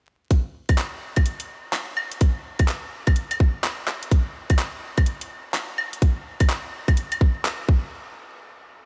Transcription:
0.31 kick, closed hi-hat
0.69 kick, closed hi-hat, claves
0.78 clap, closed hi-hat
1.16 kick, closed hi-hat, claves
1.26 closed hi-hat
1.40 closed hi-hat
1.73 clap, closed hi-hat
1.97 claves
2.11 closed hi-hat
2.21 kick, closed hi-hat
2.59 kick, closed hi-hat, claves
2.68 clap, closed hi-hat
3.07 kick, closed hi-hat, claves
3.16 closed hi-hat
3.31 closed hi-hat, claves
3.40 kick
3.64 clap, closed hi-hat
3.88 clap
4.03 closed hi-hat
4.11 kick, closed hi-hat
4.50 kick, closed hi-hat, claves
4.59 clap, closed hi-hat
4.98 kick, closed hi-hat, claves
5.06 closed hi-hat
5.21 closed hi-hat
5.54 clap, closed hi-hat
5.78 claves
5.93 closed hi-hat
6.02 kick, closed hi-hat
6.40 kick, closed hi-hat, claves
6.50 clap, closed hi-hat
6.88 kick, closed hi-hat, claves
6.97 closed hi-hat
7.12 closed hi-hat, claves
7.21 kick
7.45 clap, closed hi-hat
7.69 kick

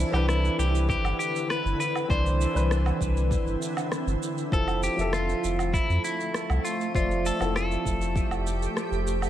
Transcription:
Already playing: D3 E3 C4 D4 E4 B4
0.11 C2 E3 C4 D4 G4, low woodblock, shaker
0.16 B4
0.28 E4, cross-stick, shaker
0.45 shaker
0.58 C2 G4, shaker
0.75 shaker
0.89 G4, kick, shaker
1.03 G1, low woodblock, shaker
1.19 G4, shaker
1.36 shaker
1.50 B4, cross-stick, shaker
1.65 G1, shaker
1.80 B4, shaker
1.95 low woodblock, shaker
2.08 C2 E3 C4 D4 C5 D5, kick, shaker
2.26 shaker
2.41 shaker
2.54 C2 E3 C4 D4 B4, shaker
2.71 cross-stick, shaker
2.86 low woodblock, shaker
3.01 C2, kick, shaker
3.17 shaker
3.31 kick, shaker
3.46 G1, shaker
3.62 shaker
3.77 low woodblock, shaker
3.92 cross-stick, shaker
4.06 G1, shaker
4.23 shaker
4.38 shaker
4.51 F1 F3 A3 C4 E4 A4, kick, shaker
4.68 low woodblock, shaker
4.83 G4, shaker
4.96 F1 F3 C4 E5, shaker
5.01 A4
5.13 F4, cross-stick, shaker
5.29 shaker
5.44 F1, shaker
5.59 low woodblock, shaker
5.73 E4, kick, shaker
5.89 F2, shaker
6.04 E4, shaker
6.20 shaker
6.34 cross-stick, shaker
6.49 C2, low woodblock, shaker
6.65 F4, shaker
6.81 shaker
6.94 F1 F3 C4 F4 G4 D5 E5, kick, shaker
7.11 shaker
7.26 A4, shaker
7.39 F1 F3 C4 E4 A4, low woodblock, shaker
7.56 A4, cross-stick, shaker
7.72 shaker
7.85 F1, kick, shaker
8.02 shaker
8.16 kick, shaker
8.30 F1, low woodblock, shaker
8.47 shaker
8.62 shaker
8.77 cross-stick, shaker
8.91 F1, shaker
9.07 shaker
9.22 low woodblock, shaker

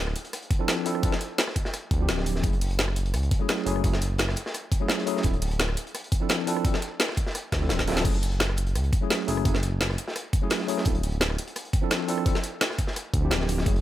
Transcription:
Already playing: D1
0.07 cross-stick
0.16 closed hi-hat
0.25 closed hi-hat
0.33 cross-stick, closed hi-hat
0.42 closed hi-hat
0.51 kick, closed hi-hat
0.59 F3 C4 D4 E4 A4
0.68 snare, closed hi-hat
0.85 F3 C4 D4 E4 A4, closed hi-hat, open hi-hat
0.95 cross-stick
1.02 F3 C4 D4 E4 A4, kick, closed hi-hat
1.12 snare
1.21 closed hi-hat
1.38 snare, closed hi-hat
1.47 cross-stick, snare
1.56 kick, closed hi-hat
1.65 snare
1.74 cross-stick, closed hi-hat
1.91 D2, kick, closed hi-hat
1.98 F3 C4 D4 E4
2.02 G4
2.08 D1, snare, closed hi-hat
2.18 snare
2.26 closed hi-hat, open hi-hat
2.36 snare
2.43 F#1 F#3 A3 C#4 E4 G#4, kick, closed hi-hat
2.53 closed hi-hat
2.61 closed hi-hat, open hi-hat
2.71 closed hi-hat
2.79 snare, closed hi-hat
2.88 cross-stick
2.96 closed hi-hat
3.06 closed hi-hat
3.14 C#2, cross-stick, closed hi-hat
3.23 closed hi-hat
3.31 kick, closed hi-hat
3.39 F#3 A3 C#4 E4 G#4
3.49 snare, closed hi-hat
3.65 F#1 F#3 A3 C#4 E4 G#4, closed hi-hat, open hi-hat
3.76 cross-stick
3.83 F#1 F#3 A3 C#4 E4 G#4, kick, closed hi-hat
3.93 snare
4.02 closed hi-hat
4.18 snare, closed hi-hat
4.28 cross-stick, snare
4.36 closed hi-hat
4.46 snare
4.54 cross-stick, closed hi-hat
4.72 kick, closed hi-hat
4.80 F#3 A3 C#4 E4 G#4
4.88 snare, closed hi-hat
4.98 snare
5.06 F#3 A3 C#4 E4 G#4, closed hi-hat, open hi-hat
5.17 snare
5.23 D1 F3 C4 E4, kick, closed hi-hat
5.33 closed hi-hat
5.42 closed hi-hat, open hi-hat
5.51 closed hi-hat
5.60 snare, closed hi-hat
5.69 cross-stick
5.77 closed hi-hat
5.87 closed hi-hat
5.95 cross-stick, closed hi-hat
6.04 closed hi-hat
6.12 kick, closed hi-hat
6.20 F3 C4 D4 E4 A4
6.29 snare, closed hi-hat
6.46 F3 C4 D4 E4 A4, closed hi-hat, open hi-hat
6.56 cross-stick
6.64 F3 C4 D4 E4 A4, kick, closed hi-hat
6.74 snare
6.82 closed hi-hat
7.00 snare, closed hi-hat
7.09 cross-stick, snare
7.17 kick, closed hi-hat
7.26 snare
7.35 cross-stick, closed hi-hat
7.52 D2, kick, snare, closed hi-hat
7.61 F3 C4 D4 E4 A4
7.69 D1, snare, closed hi-hat
7.78 kick, snare
7.87 F3 C4 D4 E4 A4, snare, closed hi-hat, open hi-hat
7.92 snare, closed hi-hat
7.96 snare, closed hi-hat
8.00 snare, closed hi-hat
8.04 F#1 F#3 A3 G#4, kick, closed hi-hat, crash
8.15 closed hi-hat
8.22 closed hi-hat, open hi-hat
8.32 closed hi-hat
8.40 snare, closed hi-hat
8.49 cross-stick
8.57 closed hi-hat
8.67 closed hi-hat
8.75 C#2, cross-stick, closed hi-hat
8.84 closed hi-hat
8.93 kick, closed hi-hat
9.01 F#3 A3 C#4 E4 G#4
9.10 snare, closed hi-hat
9.27 F#1 F#3 A3 C#4 E4 G#4, closed hi-hat, open hi-hat
9.37 cross-stick
9.44 F#1 F#3 A3 C#4 E4 G#4, kick, closed hi-hat
9.54 snare
9.63 closed hi-hat
9.81 snare, closed hi-hat
9.89 cross-stick, snare
9.98 closed hi-hat
10.08 snare
10.16 cross-stick, closed hi-hat
10.33 kick, closed hi-hat
10.41 F#3 A3 C#4 E4 G#4
10.50 snare, closed hi-hat
10.60 snare
10.67 F#3 A3 C#4 E4 G#4, closed hi-hat, open hi-hat
10.78 snare
10.85 D1 F3 C4 D4 E4, kick, closed hi-hat
10.95 closed hi-hat
11.03 closed hi-hat, open hi-hat
11.12 closed hi-hat
11.21 snare, closed hi-hat
11.30 cross-stick
11.38 closed hi-hat
11.47 closed hi-hat
11.56 cross-stick, closed hi-hat
11.65 closed hi-hat
11.73 kick, closed hi-hat
11.82 F3 C4 D4 E4 A4
11.91 snare, closed hi-hat
12.07 F3 C4 D4 E4 A4, closed hi-hat, open hi-hat
12.18 cross-stick
12.25 F3 C4 D4 E4 A4, kick, closed hi-hat
12.35 snare
12.44 closed hi-hat
12.61 snare, closed hi-hat
12.70 cross-stick, snare
12.78 kick, closed hi-hat
12.87 snare
12.96 cross-stick, closed hi-hat
13.14 D2, kick, closed hi-hat
13.21 F3 C4 D4 E4
13.25 G4
13.31 D1, snare, closed hi-hat
13.41 snare
13.49 closed hi-hat, open hi-hat
13.58 snare
13.65 F#1 F#3 A3 C#4 E4 G#4, kick, closed hi-hat
13.76 closed hi-hat

